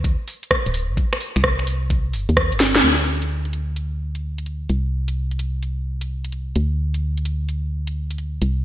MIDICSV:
0, 0, Header, 1, 3, 480
1, 0, Start_track
1, 0, Tempo, 465116
1, 1006, Time_signature, 4, 2, 24, 8
1, 8925, End_track
2, 0, Start_track
2, 0, Title_t, "FM bass"
2, 0, Program_c, 0, 39
2, 0, Note_on_c, 0, 38, 100
2, 169, Note_off_c, 0, 38, 0
2, 686, Note_on_c, 0, 26, 81
2, 925, Note_on_c, 0, 33, 89
2, 941, Note_off_c, 0, 26, 0
2, 994, Note_off_c, 0, 33, 0
2, 1406, Note_on_c, 0, 36, 101
2, 2205, Note_on_c, 0, 31, 95
2, 2221, Note_off_c, 0, 36, 0
2, 2342, Note_off_c, 0, 31, 0
2, 2364, Note_on_c, 0, 39, 107
2, 2605, Note_on_c, 0, 31, 100
2, 2620, Note_off_c, 0, 39, 0
2, 2907, Note_off_c, 0, 31, 0
2, 2926, Note_on_c, 0, 38, 81
2, 4830, Note_off_c, 0, 38, 0
2, 4847, Note_on_c, 0, 36, 83
2, 6751, Note_off_c, 0, 36, 0
2, 6768, Note_on_c, 0, 38, 89
2, 8671, Note_off_c, 0, 38, 0
2, 8687, Note_on_c, 0, 36, 83
2, 8925, Note_off_c, 0, 36, 0
2, 8925, End_track
3, 0, Start_track
3, 0, Title_t, "Drums"
3, 45, Note_on_c, 9, 36, 111
3, 46, Note_on_c, 9, 42, 66
3, 148, Note_off_c, 9, 36, 0
3, 149, Note_off_c, 9, 42, 0
3, 285, Note_on_c, 9, 46, 109
3, 388, Note_off_c, 9, 46, 0
3, 444, Note_on_c, 9, 42, 70
3, 524, Note_on_c, 9, 36, 112
3, 524, Note_on_c, 9, 37, 113
3, 547, Note_off_c, 9, 42, 0
3, 627, Note_off_c, 9, 36, 0
3, 627, Note_off_c, 9, 37, 0
3, 684, Note_on_c, 9, 42, 58
3, 764, Note_on_c, 9, 46, 108
3, 787, Note_off_c, 9, 42, 0
3, 867, Note_off_c, 9, 46, 0
3, 1004, Note_on_c, 9, 36, 110
3, 1004, Note_on_c, 9, 42, 68
3, 1107, Note_off_c, 9, 36, 0
3, 1107, Note_off_c, 9, 42, 0
3, 1163, Note_on_c, 9, 26, 56
3, 1163, Note_on_c, 9, 37, 59
3, 1244, Note_on_c, 9, 46, 111
3, 1266, Note_off_c, 9, 26, 0
3, 1266, Note_off_c, 9, 37, 0
3, 1347, Note_off_c, 9, 46, 0
3, 1404, Note_on_c, 9, 26, 33
3, 1404, Note_on_c, 9, 42, 67
3, 1484, Note_on_c, 9, 36, 116
3, 1484, Note_on_c, 9, 37, 119
3, 1507, Note_off_c, 9, 26, 0
3, 1507, Note_off_c, 9, 42, 0
3, 1587, Note_off_c, 9, 36, 0
3, 1587, Note_off_c, 9, 37, 0
3, 1644, Note_on_c, 9, 26, 32
3, 1644, Note_on_c, 9, 42, 37
3, 1723, Note_on_c, 9, 46, 107
3, 1747, Note_off_c, 9, 26, 0
3, 1747, Note_off_c, 9, 42, 0
3, 1826, Note_off_c, 9, 46, 0
3, 1963, Note_on_c, 9, 36, 115
3, 1963, Note_on_c, 9, 42, 68
3, 2066, Note_off_c, 9, 42, 0
3, 2067, Note_off_c, 9, 36, 0
3, 2203, Note_on_c, 9, 46, 108
3, 2306, Note_off_c, 9, 46, 0
3, 2363, Note_on_c, 9, 42, 65
3, 2444, Note_on_c, 9, 36, 116
3, 2444, Note_on_c, 9, 37, 121
3, 2466, Note_off_c, 9, 42, 0
3, 2547, Note_off_c, 9, 36, 0
3, 2547, Note_off_c, 9, 37, 0
3, 2603, Note_on_c, 9, 42, 56
3, 2684, Note_on_c, 9, 38, 84
3, 2684, Note_on_c, 9, 46, 109
3, 2706, Note_off_c, 9, 42, 0
3, 2787, Note_off_c, 9, 38, 0
3, 2787, Note_off_c, 9, 46, 0
3, 2843, Note_on_c, 9, 38, 96
3, 2923, Note_on_c, 9, 42, 62
3, 2923, Note_on_c, 9, 49, 77
3, 2947, Note_off_c, 9, 38, 0
3, 3026, Note_off_c, 9, 42, 0
3, 3026, Note_off_c, 9, 49, 0
3, 3323, Note_on_c, 9, 42, 61
3, 3426, Note_off_c, 9, 42, 0
3, 3563, Note_on_c, 9, 42, 34
3, 3644, Note_off_c, 9, 42, 0
3, 3644, Note_on_c, 9, 42, 58
3, 3747, Note_off_c, 9, 42, 0
3, 3884, Note_on_c, 9, 42, 57
3, 3987, Note_off_c, 9, 42, 0
3, 4283, Note_on_c, 9, 42, 58
3, 4386, Note_off_c, 9, 42, 0
3, 4523, Note_on_c, 9, 42, 49
3, 4604, Note_off_c, 9, 42, 0
3, 4604, Note_on_c, 9, 42, 32
3, 4708, Note_off_c, 9, 42, 0
3, 4844, Note_on_c, 9, 42, 60
3, 4947, Note_off_c, 9, 42, 0
3, 5244, Note_on_c, 9, 42, 60
3, 5347, Note_off_c, 9, 42, 0
3, 5484, Note_on_c, 9, 42, 32
3, 5565, Note_off_c, 9, 42, 0
3, 5565, Note_on_c, 9, 42, 58
3, 5668, Note_off_c, 9, 42, 0
3, 5806, Note_on_c, 9, 42, 58
3, 5909, Note_off_c, 9, 42, 0
3, 6206, Note_on_c, 9, 42, 59
3, 6309, Note_off_c, 9, 42, 0
3, 6445, Note_on_c, 9, 42, 47
3, 6525, Note_off_c, 9, 42, 0
3, 6525, Note_on_c, 9, 42, 31
3, 6629, Note_off_c, 9, 42, 0
3, 6765, Note_on_c, 9, 42, 58
3, 6868, Note_off_c, 9, 42, 0
3, 7165, Note_on_c, 9, 42, 58
3, 7268, Note_off_c, 9, 42, 0
3, 7404, Note_on_c, 9, 42, 32
3, 7486, Note_off_c, 9, 42, 0
3, 7486, Note_on_c, 9, 42, 57
3, 7589, Note_off_c, 9, 42, 0
3, 7726, Note_on_c, 9, 42, 56
3, 7829, Note_off_c, 9, 42, 0
3, 8125, Note_on_c, 9, 42, 58
3, 8228, Note_off_c, 9, 42, 0
3, 8365, Note_on_c, 9, 42, 46
3, 8445, Note_off_c, 9, 42, 0
3, 8445, Note_on_c, 9, 42, 31
3, 8548, Note_off_c, 9, 42, 0
3, 8685, Note_on_c, 9, 42, 62
3, 8788, Note_off_c, 9, 42, 0
3, 8925, End_track
0, 0, End_of_file